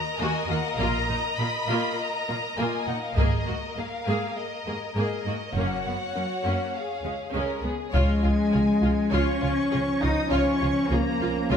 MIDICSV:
0, 0, Header, 1, 9, 480
1, 0, Start_track
1, 0, Tempo, 595238
1, 643, Time_signature, 4, 2, 24, 8
1, 9329, End_track
2, 0, Start_track
2, 0, Title_t, "Violin section"
2, 0, Program_c, 0, 48
2, 0, Note_on_c, 0, 82, 68
2, 152, Note_off_c, 0, 82, 0
2, 158, Note_on_c, 0, 80, 64
2, 400, Note_off_c, 0, 80, 0
2, 406, Note_on_c, 0, 78, 57
2, 522, Note_off_c, 0, 78, 0
2, 529, Note_on_c, 0, 77, 59
2, 642, Note_on_c, 0, 82, 75
2, 646, Note_off_c, 0, 77, 0
2, 1118, Note_on_c, 0, 83, 66
2, 1123, Note_off_c, 0, 82, 0
2, 1601, Note_off_c, 0, 83, 0
2, 1602, Note_on_c, 0, 82, 67
2, 2082, Note_on_c, 0, 80, 58
2, 2084, Note_off_c, 0, 82, 0
2, 2322, Note_on_c, 0, 78, 53
2, 2324, Note_off_c, 0, 80, 0
2, 2443, Note_off_c, 0, 78, 0
2, 2444, Note_on_c, 0, 77, 51
2, 2556, Note_on_c, 0, 75, 60
2, 2562, Note_off_c, 0, 77, 0
2, 3038, Note_on_c, 0, 77, 60
2, 3041, Note_off_c, 0, 75, 0
2, 3519, Note_on_c, 0, 75, 54
2, 3522, Note_off_c, 0, 77, 0
2, 3999, Note_off_c, 0, 75, 0
2, 4008, Note_on_c, 0, 75, 53
2, 4478, Note_off_c, 0, 75, 0
2, 4482, Note_on_c, 0, 78, 60
2, 5445, Note_off_c, 0, 78, 0
2, 5445, Note_on_c, 0, 77, 45
2, 5927, Note_off_c, 0, 77, 0
2, 6407, Note_on_c, 0, 80, 56
2, 7335, Note_off_c, 0, 80, 0
2, 7360, Note_on_c, 0, 85, 53
2, 8083, Note_off_c, 0, 85, 0
2, 8094, Note_on_c, 0, 87, 51
2, 8321, Note_on_c, 0, 85, 58
2, 8330, Note_off_c, 0, 87, 0
2, 8794, Note_off_c, 0, 85, 0
2, 8809, Note_on_c, 0, 82, 60
2, 9285, Note_on_c, 0, 80, 51
2, 9287, Note_off_c, 0, 82, 0
2, 9329, Note_off_c, 0, 80, 0
2, 9329, End_track
3, 0, Start_track
3, 0, Title_t, "Violin section"
3, 0, Program_c, 1, 48
3, 0, Note_on_c, 1, 70, 47
3, 0, Note_on_c, 1, 75, 48
3, 2524, Note_off_c, 1, 75, 0
3, 2526, Note_off_c, 1, 70, 0
3, 2559, Note_on_c, 1, 70, 38
3, 2564, Note_off_c, 1, 70, 0
3, 2564, Note_on_c, 1, 70, 42
3, 4487, Note_off_c, 1, 70, 0
3, 4489, Note_on_c, 1, 73, 37
3, 4490, Note_on_c, 1, 66, 36
3, 5430, Note_off_c, 1, 66, 0
3, 5444, Note_on_c, 1, 68, 34
3, 5878, Note_off_c, 1, 68, 0
3, 5881, Note_off_c, 1, 73, 0
3, 5916, Note_on_c, 1, 70, 40
3, 6145, Note_off_c, 1, 70, 0
3, 6154, Note_on_c, 1, 68, 33
3, 6385, Note_on_c, 1, 73, 43
3, 6386, Note_off_c, 1, 73, 0
3, 6386, Note_on_c, 1, 73, 47
3, 6401, Note_off_c, 1, 68, 0
3, 6619, Note_off_c, 1, 73, 0
3, 6634, Note_on_c, 1, 65, 30
3, 6636, Note_off_c, 1, 65, 0
3, 6636, Note_on_c, 1, 65, 31
3, 6700, Note_off_c, 1, 65, 0
3, 6870, Note_on_c, 1, 68, 34
3, 6935, Note_off_c, 1, 68, 0
3, 7112, Note_on_c, 1, 65, 38
3, 7115, Note_off_c, 1, 65, 0
3, 7115, Note_on_c, 1, 65, 33
3, 7179, Note_off_c, 1, 65, 0
3, 7352, Note_on_c, 1, 73, 42
3, 7354, Note_off_c, 1, 73, 0
3, 7354, Note_on_c, 1, 73, 48
3, 7583, Note_off_c, 1, 73, 0
3, 7592, Note_on_c, 1, 65, 35
3, 7657, Note_off_c, 1, 65, 0
3, 7831, Note_on_c, 1, 68, 41
3, 7832, Note_off_c, 1, 68, 0
3, 7832, Note_on_c, 1, 68, 42
3, 7897, Note_off_c, 1, 68, 0
3, 8068, Note_on_c, 1, 65, 38
3, 8070, Note_off_c, 1, 65, 0
3, 8070, Note_on_c, 1, 65, 37
3, 8135, Note_off_c, 1, 65, 0
3, 8314, Note_on_c, 1, 73, 46
3, 8316, Note_off_c, 1, 73, 0
3, 8316, Note_on_c, 1, 73, 54
3, 8544, Note_off_c, 1, 73, 0
3, 8563, Note_on_c, 1, 65, 33
3, 8566, Note_off_c, 1, 65, 0
3, 8566, Note_on_c, 1, 65, 33
3, 8630, Note_off_c, 1, 65, 0
3, 8804, Note_on_c, 1, 68, 39
3, 8807, Note_off_c, 1, 68, 0
3, 8807, Note_on_c, 1, 68, 35
3, 8872, Note_off_c, 1, 68, 0
3, 9050, Note_on_c, 1, 65, 39
3, 9114, Note_off_c, 1, 65, 0
3, 9283, Note_on_c, 1, 73, 51
3, 9329, Note_off_c, 1, 73, 0
3, 9329, End_track
4, 0, Start_track
4, 0, Title_t, "Viola section"
4, 0, Program_c, 2, 48
4, 162, Note_on_c, 2, 58, 44
4, 163, Note_on_c, 2, 66, 51
4, 386, Note_off_c, 2, 58, 0
4, 386, Note_off_c, 2, 66, 0
4, 400, Note_on_c, 2, 58, 42
4, 400, Note_on_c, 2, 65, 46
4, 464, Note_off_c, 2, 58, 0
4, 465, Note_off_c, 2, 65, 0
4, 644, Note_on_c, 2, 58, 57
4, 644, Note_on_c, 2, 65, 53
4, 867, Note_off_c, 2, 58, 0
4, 867, Note_off_c, 2, 65, 0
4, 888, Note_on_c, 2, 63, 31
4, 889, Note_on_c, 2, 58, 33
4, 952, Note_off_c, 2, 63, 0
4, 953, Note_off_c, 2, 58, 0
4, 1125, Note_on_c, 2, 58, 38
4, 1127, Note_on_c, 2, 65, 34
4, 1190, Note_off_c, 2, 58, 0
4, 1191, Note_off_c, 2, 65, 0
4, 1365, Note_on_c, 2, 58, 54
4, 1369, Note_on_c, 2, 65, 53
4, 1588, Note_off_c, 2, 58, 0
4, 1590, Note_off_c, 2, 65, 0
4, 1848, Note_on_c, 2, 58, 39
4, 1848, Note_on_c, 2, 65, 36
4, 1913, Note_off_c, 2, 58, 0
4, 1913, Note_off_c, 2, 65, 0
4, 2081, Note_on_c, 2, 58, 53
4, 2081, Note_on_c, 2, 65, 44
4, 2306, Note_off_c, 2, 58, 0
4, 2306, Note_off_c, 2, 65, 0
4, 2324, Note_on_c, 2, 58, 35
4, 2324, Note_on_c, 2, 63, 36
4, 2388, Note_off_c, 2, 58, 0
4, 2388, Note_off_c, 2, 63, 0
4, 2558, Note_on_c, 2, 58, 53
4, 2560, Note_on_c, 2, 68, 52
4, 2785, Note_off_c, 2, 58, 0
4, 2786, Note_off_c, 2, 68, 0
4, 2796, Note_on_c, 2, 58, 37
4, 2798, Note_on_c, 2, 66, 34
4, 2861, Note_off_c, 2, 58, 0
4, 2863, Note_off_c, 2, 66, 0
4, 3040, Note_on_c, 2, 58, 31
4, 3044, Note_on_c, 2, 68, 33
4, 3104, Note_off_c, 2, 58, 0
4, 3108, Note_off_c, 2, 68, 0
4, 3290, Note_on_c, 2, 58, 43
4, 3291, Note_on_c, 2, 68, 43
4, 3511, Note_off_c, 2, 58, 0
4, 3512, Note_off_c, 2, 68, 0
4, 3767, Note_on_c, 2, 68, 33
4, 3768, Note_on_c, 2, 58, 33
4, 3831, Note_off_c, 2, 68, 0
4, 3833, Note_off_c, 2, 58, 0
4, 4008, Note_on_c, 2, 68, 44
4, 4009, Note_on_c, 2, 58, 41
4, 4231, Note_off_c, 2, 58, 0
4, 4231, Note_off_c, 2, 68, 0
4, 4243, Note_on_c, 2, 58, 36
4, 4246, Note_on_c, 2, 66, 33
4, 4308, Note_off_c, 2, 58, 0
4, 4311, Note_off_c, 2, 66, 0
4, 4489, Note_on_c, 2, 61, 41
4, 4490, Note_on_c, 2, 58, 44
4, 4711, Note_off_c, 2, 61, 0
4, 4712, Note_off_c, 2, 58, 0
4, 4734, Note_on_c, 2, 58, 27
4, 4736, Note_on_c, 2, 59, 28
4, 4799, Note_off_c, 2, 58, 0
4, 4800, Note_off_c, 2, 59, 0
4, 4964, Note_on_c, 2, 58, 28
4, 4965, Note_on_c, 2, 61, 26
4, 5029, Note_off_c, 2, 58, 0
4, 5030, Note_off_c, 2, 61, 0
4, 5202, Note_on_c, 2, 58, 38
4, 5203, Note_on_c, 2, 61, 40
4, 5428, Note_off_c, 2, 58, 0
4, 5429, Note_off_c, 2, 61, 0
4, 5683, Note_on_c, 2, 56, 30
4, 5684, Note_on_c, 2, 61, 28
4, 5748, Note_off_c, 2, 56, 0
4, 5749, Note_off_c, 2, 61, 0
4, 5923, Note_on_c, 2, 56, 38
4, 5923, Note_on_c, 2, 61, 41
4, 6148, Note_off_c, 2, 56, 0
4, 6149, Note_off_c, 2, 61, 0
4, 6164, Note_on_c, 2, 56, 34
4, 6166, Note_on_c, 2, 59, 29
4, 6229, Note_off_c, 2, 56, 0
4, 6231, Note_off_c, 2, 59, 0
4, 6407, Note_on_c, 2, 65, 51
4, 6408, Note_off_c, 2, 65, 0
4, 6408, Note_on_c, 2, 65, 51
4, 6631, Note_off_c, 2, 65, 0
4, 6646, Note_on_c, 2, 65, 28
4, 6647, Note_off_c, 2, 65, 0
4, 6647, Note_on_c, 2, 65, 29
4, 6711, Note_off_c, 2, 65, 0
4, 6884, Note_on_c, 2, 65, 30
4, 6949, Note_off_c, 2, 65, 0
4, 7128, Note_on_c, 2, 65, 35
4, 7132, Note_off_c, 2, 65, 0
4, 7132, Note_on_c, 2, 65, 32
4, 7196, Note_off_c, 2, 65, 0
4, 7366, Note_on_c, 2, 65, 54
4, 7367, Note_off_c, 2, 65, 0
4, 7367, Note_on_c, 2, 65, 51
4, 7590, Note_off_c, 2, 65, 0
4, 7602, Note_on_c, 2, 65, 38
4, 7603, Note_off_c, 2, 65, 0
4, 7603, Note_on_c, 2, 65, 36
4, 7667, Note_off_c, 2, 65, 0
4, 7837, Note_on_c, 2, 65, 40
4, 7841, Note_off_c, 2, 65, 0
4, 7841, Note_on_c, 2, 65, 35
4, 7905, Note_off_c, 2, 65, 0
4, 8084, Note_on_c, 2, 65, 36
4, 8149, Note_off_c, 2, 65, 0
4, 8327, Note_on_c, 2, 65, 47
4, 8550, Note_off_c, 2, 65, 0
4, 8559, Note_on_c, 2, 65, 37
4, 8562, Note_off_c, 2, 65, 0
4, 8562, Note_on_c, 2, 65, 34
4, 8626, Note_off_c, 2, 65, 0
4, 8799, Note_on_c, 2, 65, 36
4, 8864, Note_off_c, 2, 65, 0
4, 9043, Note_on_c, 2, 65, 40
4, 9045, Note_off_c, 2, 65, 0
4, 9045, Note_on_c, 2, 65, 36
4, 9110, Note_off_c, 2, 65, 0
4, 9280, Note_on_c, 2, 65, 53
4, 9282, Note_off_c, 2, 65, 0
4, 9282, Note_on_c, 2, 65, 49
4, 9329, Note_off_c, 2, 65, 0
4, 9329, End_track
5, 0, Start_track
5, 0, Title_t, "French horn section"
5, 0, Program_c, 3, 60
5, 6405, Note_on_c, 3, 56, 53
5, 7333, Note_off_c, 3, 56, 0
5, 7361, Note_on_c, 3, 61, 49
5, 8069, Note_off_c, 3, 61, 0
5, 8084, Note_on_c, 3, 63, 55
5, 8320, Note_off_c, 3, 63, 0
5, 8324, Note_on_c, 3, 61, 56
5, 8801, Note_on_c, 3, 58, 57
5, 8805, Note_off_c, 3, 61, 0
5, 9274, Note_off_c, 3, 58, 0
5, 9274, Note_on_c, 3, 56, 49
5, 9329, Note_off_c, 3, 56, 0
5, 9329, End_track
6, 0, Start_track
6, 0, Title_t, "Trombone section"
6, 0, Program_c, 4, 61
6, 6392, Note_on_c, 4, 53, 50
6, 6393, Note_on_c, 4, 61, 50
6, 9329, Note_off_c, 4, 53, 0
6, 9329, Note_off_c, 4, 61, 0
6, 9329, End_track
7, 0, Start_track
7, 0, Title_t, "Cello section"
7, 0, Program_c, 5, 48
7, 155, Note_on_c, 5, 39, 54
7, 220, Note_off_c, 5, 39, 0
7, 393, Note_on_c, 5, 39, 39
7, 457, Note_off_c, 5, 39, 0
7, 633, Note_on_c, 5, 46, 51
7, 698, Note_off_c, 5, 46, 0
7, 878, Note_on_c, 5, 46, 37
7, 942, Note_off_c, 5, 46, 0
7, 1120, Note_on_c, 5, 46, 35
7, 1185, Note_off_c, 5, 46, 0
7, 1358, Note_on_c, 5, 46, 50
7, 1422, Note_off_c, 5, 46, 0
7, 1846, Note_on_c, 5, 46, 32
7, 1910, Note_off_c, 5, 46, 0
7, 2080, Note_on_c, 5, 46, 49
7, 2144, Note_off_c, 5, 46, 0
7, 2324, Note_on_c, 5, 46, 35
7, 2389, Note_off_c, 5, 46, 0
7, 2557, Note_on_c, 5, 44, 51
7, 2622, Note_off_c, 5, 44, 0
7, 2802, Note_on_c, 5, 44, 36
7, 2867, Note_off_c, 5, 44, 0
7, 3041, Note_on_c, 5, 44, 34
7, 3105, Note_off_c, 5, 44, 0
7, 3280, Note_on_c, 5, 44, 47
7, 3345, Note_off_c, 5, 44, 0
7, 3761, Note_on_c, 5, 44, 30
7, 3826, Note_off_c, 5, 44, 0
7, 4003, Note_on_c, 5, 44, 44
7, 4067, Note_off_c, 5, 44, 0
7, 4242, Note_on_c, 5, 44, 33
7, 4306, Note_off_c, 5, 44, 0
7, 4480, Note_on_c, 5, 42, 43
7, 4544, Note_off_c, 5, 42, 0
7, 4723, Note_on_c, 5, 42, 31
7, 4788, Note_off_c, 5, 42, 0
7, 4959, Note_on_c, 5, 42, 29
7, 5023, Note_off_c, 5, 42, 0
7, 5196, Note_on_c, 5, 42, 40
7, 5261, Note_off_c, 5, 42, 0
7, 5678, Note_on_c, 5, 37, 28
7, 5742, Note_off_c, 5, 37, 0
7, 5921, Note_on_c, 5, 37, 39
7, 5985, Note_off_c, 5, 37, 0
7, 6161, Note_on_c, 5, 37, 29
7, 6226, Note_off_c, 5, 37, 0
7, 6403, Note_on_c, 5, 56, 58
7, 7333, Note_off_c, 5, 56, 0
7, 7361, Note_on_c, 5, 61, 62
7, 8084, Note_off_c, 5, 61, 0
7, 8087, Note_on_c, 5, 63, 59
7, 8325, Note_on_c, 5, 61, 59
7, 8327, Note_off_c, 5, 63, 0
7, 8796, Note_off_c, 5, 61, 0
7, 8807, Note_on_c, 5, 58, 64
7, 9286, Note_off_c, 5, 58, 0
7, 9287, Note_on_c, 5, 56, 56
7, 9329, Note_off_c, 5, 56, 0
7, 9329, End_track
8, 0, Start_track
8, 0, Title_t, "Double bass section"
8, 0, Program_c, 6, 48
8, 640, Note_on_c, 6, 34, 51
8, 865, Note_off_c, 6, 34, 0
8, 2564, Note_on_c, 6, 32, 49
8, 2788, Note_off_c, 6, 32, 0
8, 4481, Note_on_c, 6, 30, 44
8, 4707, Note_off_c, 6, 30, 0
8, 6407, Note_on_c, 6, 37, 47
8, 6472, Note_off_c, 6, 37, 0
8, 6645, Note_on_c, 6, 37, 37
8, 6710, Note_off_c, 6, 37, 0
8, 6885, Note_on_c, 6, 37, 36
8, 6949, Note_off_c, 6, 37, 0
8, 7122, Note_on_c, 6, 37, 36
8, 7187, Note_off_c, 6, 37, 0
8, 7356, Note_on_c, 6, 37, 52
8, 7421, Note_off_c, 6, 37, 0
8, 7600, Note_on_c, 6, 37, 34
8, 7665, Note_off_c, 6, 37, 0
8, 7843, Note_on_c, 6, 37, 35
8, 7908, Note_off_c, 6, 37, 0
8, 8083, Note_on_c, 6, 37, 39
8, 8147, Note_off_c, 6, 37, 0
8, 8325, Note_on_c, 6, 37, 51
8, 8390, Note_off_c, 6, 37, 0
8, 8563, Note_on_c, 6, 37, 40
8, 8628, Note_off_c, 6, 37, 0
8, 8800, Note_on_c, 6, 37, 37
8, 8865, Note_off_c, 6, 37, 0
8, 9035, Note_on_c, 6, 37, 38
8, 9100, Note_off_c, 6, 37, 0
8, 9276, Note_on_c, 6, 37, 57
8, 9329, Note_off_c, 6, 37, 0
8, 9329, End_track
9, 0, Start_track
9, 0, Title_t, "Taiko and cinematic ensemble drums"
9, 2560, Note_on_c, 9, 41, 45
9, 2640, Note_off_c, 9, 41, 0
9, 6404, Note_on_c, 9, 41, 50
9, 6485, Note_off_c, 9, 41, 0
9, 9329, End_track
0, 0, End_of_file